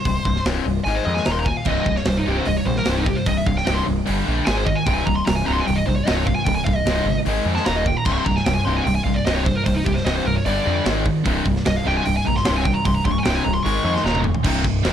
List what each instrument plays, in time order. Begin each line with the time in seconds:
Already playing: lead electric guitar C5
0.05 picked electric bass C1, distorted electric guitar C2 G2, kick, open hi-hat
0.25 picked electric bass C1, distorted electric guitar C2 G2, kick
0.36 snare
0.45 picked electric bass C1, distorted electric guitar C2 G2 C3, snare, open hi-hat
0.66 picked electric bass C1, distorted electric guitar C2 G2
0.84 picked electric bass G#1, distorted electric guitar G#2 D#3 G#3, lead electric guitar G#5, open hi-hat
0.95 lead electric guitar C5
1.05 picked electric bass F2, distorted electric guitar G#2 D#3 G#3, lead electric guitar D#5
1.14 lead electric guitar G#5, snare
1.25 picked electric bass D#1, distorted electric guitar D#2 A#2 D#3, lead electric guitar A#5, snare, open hi-hat
1.32 lead electric guitar C6
1.40 lead electric guitar A#5
1.45 distorted electric guitar D#2 A#2, lead electric guitar G#5, kick
1.57 lead electric guitar F5
1.65 picked electric bass C1, distorted electric guitar C2 G2 C3, lead electric guitar D#5, kick, crash
1.86 picked electric bass C1, distorted electric guitar C2 G2, kick
1.96 lead electric guitar C#5, snare
2.05 picked electric bass C1, distorted electric guitar C2 G2, lead electric guitar C5, snare, open hi-hat
2.17 lead electric guitar D#4
2.27 picked electric bass C1, distorted electric guitar C2 G2 C3, lead electric guitar G4
2.37 lead electric guitar C5
2.46 picked electric bass C1, distorted electric guitar C2 G2, lead electric guitar D#5, open hi-hat
2.58 lead electric guitar C#5
2.66 picked electric bass A#1, distorted electric guitar C2 G2, lead electric guitar C5
2.76 lead electric guitar A#4, snare
2.85 picked electric bass C1, distorted electric guitar C2 G2 C3, lead electric guitar C5, snare, open hi-hat
2.97 lead electric guitar D#4
3.06 distorted electric guitar C2 G2, lead electric guitar G4, kick
3.16 lead electric guitar C5
3.26 picked electric bass C1, distorted electric guitar C2 G2, lead electric guitar D#5, kick, open hi-hat
3.37 lead electric guitar E5
3.46 picked electric bass C1, distorted electric guitar C2 G2, lead electric guitar F5, kick
3.57 lead electric guitar G5, snare
3.65 picked electric bass C1, distorted electric guitar C2 G2 C3, lead electric guitar G5, snare, open hi-hat
3.74 lead electric guitar C6
3.86 picked electric bass C1, distorted electric guitar C2 G2
4.06 picked electric bass G1, distorted electric guitar G2 D3 G3, open hi-hat
4.26 picked electric bass A#1, distorted electric guitar G2 D3 G3
4.46 picked electric bass G#1, distorted electric guitar G#2 D#3 G#3, lead electric guitar G#5, snare, open hi-hat
4.57 lead electric guitar C5
4.66 distorted electric guitar G#2 D#3, lead electric guitar D#5, kick
4.75 lead electric guitar G#5
4.86 picked electric bass C1, distorted electric guitar C2 G2 C3, lead electric guitar G5, kick, open hi-hat
4.95 lead electric guitar G#5
5.06 picked electric bass C1, distorted electric guitar C2 G2, lead electric guitar A#5, kick
5.16 lead electric guitar C6
5.26 picked electric bass C1, distorted electric guitar C2 G2, lead electric guitar A#5, snare, open hi-hat
5.36 lead electric guitar G#5
5.44 distorted electric guitar C2 G2 C3, lead electric guitar A#5
5.48 picked electric bass C1
5.53 lead electric guitar C6
5.60 lead electric guitar G#5
5.65 picked electric bass C1, distorted electric guitar C2 G2, lead electric guitar G5, open hi-hat
5.76 lead electric guitar D#5
5.86 picked electric bass A#1, distorted electric guitar C2 G2, lead electric guitar C5
5.96 lead electric guitar C#5
6.05 picked electric bass C1, distorted electric guitar C2 G2 C3, lead electric guitar D#5, snare, open hi-hat
6.16 lead electric guitar C#5
6.26 distorted electric guitar C2 G2, lead electric guitar F5, kick
6.35 lead electric guitar G#5
6.45 picked electric bass C1, distorted electric guitar C2 G2, lead electric guitar G5, kick, open hi-hat
6.55 lead electric guitar G#5
6.65 picked electric bass C1, distorted electric guitar C2 G2, lead electric guitar F5, kick
6.76 lead electric guitar D#5
6.86 picked electric bass C1, distorted electric guitar C2 G2 C3, snare, open hi-hat
7.05 picked electric bass G1, distorted electric guitar C2 G2
7.25 picked electric bass G#1, distorted electric guitar G#2 D#3 G#3, open hi-hat
7.45 picked electric bass F2, distorted electric guitar G#2 D#3 G#3
7.55 lead electric guitar A5, snare
7.65 picked electric bass D#1, distorted electric guitar D#2 A#2 D#3, lead electric guitar A#5, snare, open hi-hat
7.76 lead electric guitar D#5
7.86 distorted electric guitar D#2 A#2, lead electric guitar G5, kick
7.97 lead electric guitar A#5
8.05 picked electric bass C1, distorted electric guitar C2 G2 C3, lead electric guitar C6, kick, crash
8.12 lead electric guitar C#6
8.18 lead electric guitar C6
8.25 picked electric bass C1, distorted electric guitar C2 G2, lead electric guitar A#5, kick
8.36 lead electric guitar G#5, snare
8.46 picked electric bass C1, distorted electric guitar C2 G2, lead electric guitar G5, snare, open hi-hat
8.54 lead electric guitar G#5
8.65 picked electric bass C1, distorted electric guitar C2 G2 C3, lead electric guitar C6
8.76 lead electric guitar G#5
8.85 picked electric bass C1, distorted electric guitar C2 G2, lead electric guitar G5, open hi-hat
8.95 lead electric guitar G#5
9.04 picked electric bass A#1, distorted electric guitar C2 G2, lead electric guitar F5
9.14 lead electric guitar D5
9.25 picked electric bass C1, distorted electric guitar C2 G2 C3, lead electric guitar D#5, snare, open hi-hat
9.35 lead electric guitar C#5
9.44 distorted electric guitar C2 G2, lead electric guitar C5, kick
9.56 lead electric guitar A#4
9.64 picked electric bass C1, distorted electric guitar C2 G2, lead electric guitar C5, kick, open hi-hat
9.74 lead electric guitar D#4
9.84 picked electric bass C1, distorted electric guitar C2 G2, lead electric guitar G4, kick
9.94 lead electric guitar C5, snare
10.05 picked electric bass C1, distorted electric guitar C2 G2 C3, lead electric guitar D#5, snare, open hi-hat
10.16 lead electric guitar C5
10.25 picked electric bass C1, distorted electric guitar C2 G2, lead electric guitar A#4
10.35 lead electric guitar C#5
10.46 picked electric bass G1, distorted electric guitar G2 D3 G3, lead electric guitar D5, open hi-hat
10.65 picked electric bass F2, distorted electric guitar G2 D3 G3
10.86 picked electric bass G#1, distorted electric guitar G#2 D#3 G#3, snare, open hi-hat
11.06 distorted electric guitar G#2 D#3, kick
11.25 picked electric bass C1, distorted electric guitar C2 G2 C3, kick, open hi-hat
11.46 picked electric bass C1, distorted electric guitar C2 G2, kick
11.56 snare
11.65 picked electric bass C1, distorted electric guitar C2 G2, lead electric guitar D#5, snare, open hi-hat
11.76 lead electric guitar F5
11.86 picked electric bass C1, distorted electric guitar C2 G2 C3, lead electric guitar G5
11.97 lead electric guitar G#5
12.05 picked electric bass C1, distorted electric guitar C2 G2, lead electric guitar G5, open hi-hat
12.17 lead electric guitar G#5
12.26 picked electric bass A#1, distorted electric guitar C2 G2, lead electric guitar A#5
12.36 lead electric guitar C6, snare
12.45 picked electric bass C1, distorted electric guitar C2 G2 C3, lead electric guitar C6, snare, open hi-hat
12.56 lead electric guitar G#5
12.65 distorted electric guitar C2 G2, lead electric guitar G5, kick
12.74 lead electric guitar A#5
12.85 picked electric bass C1, distorted electric guitar C2 G2, lead electric guitar C6, kick, open hi-hat
12.95 lead electric guitar A#5
13.05 picked electric bass C1, distorted electric guitar C2 G2, lead electric guitar C6, kick
13.12 lead electric guitar C#6
13.18 lead electric guitar G#5
13.24 picked electric bass C1, distorted electric guitar C2 G2 C3, lead electric guitar G5, snare, open hi-hat
13.35 lead electric guitar G#5
13.44 picked electric bass C1, distorted electric guitar C2 G2, lead electric guitar A#5
13.54 lead electric guitar C6
13.63 picked electric bass G#1, distorted electric guitar G#2 D#3 G#3, lead electric guitar C#6, open hi-hat
13.84 picked electric bass F2, distorted electric guitar G#2 D#3 G#3
13.95 lead electric guitar C6, snare
14.04 picked electric bass D#1, distorted electric guitar D#2 A#2 D#3, lead electric guitar A#5, snare
14.15 high tom
14.24 distorted electric guitar D#2 A#2, mid tom
14.34 floor tom
14.44 picked electric bass C1, distorted electric guitar C2 G2 C3, kick, crash
14.64 picked electric bass C1, distorted electric guitar C2 G2, kick
14.84 picked electric bass D#1, distorted electric guitar D#2 A#2 D#3, snare, open hi-hat